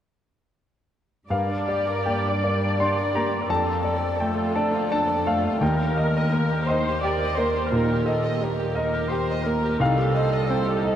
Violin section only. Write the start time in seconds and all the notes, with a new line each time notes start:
1.30 A#3
1.48 D4
1.67 G4
1.86 A#4
2.04 G4
2.23 D4
2.42 A#3
2.60 D4
2.77 G4
2.97 A#4
3.14 G4
3.31 D4
3.47 D4
3.63 F4
3.80 A4
3.98 D5
4.16 A4
4.35 F4
4.54 D4
4.71 F4
4.90 A4
5.07 D5
5.25 A4
5.42 F4
5.60 D#4
5.78 G4
5.97 A#4
6.15 D#5
6.34 A#4
6.52 G4
6.69 D#4
6.88 G4
7.04 A#4
7.23 D#5
7.39 A#4
7.56 G4
7.73 D#4
7.90 G4
8.06 A#4
8.23 D#5
8.42 A#4
8.59 G4
8.77 D#4
8.94 G4
9.13 A#4
9.31 D#5
9.46 A#4
9.64 G4
9.80 D#4
9.97 G4
10.15 C5
10.33 D#5
10.48 C5
10.65 G4
10.82 D#4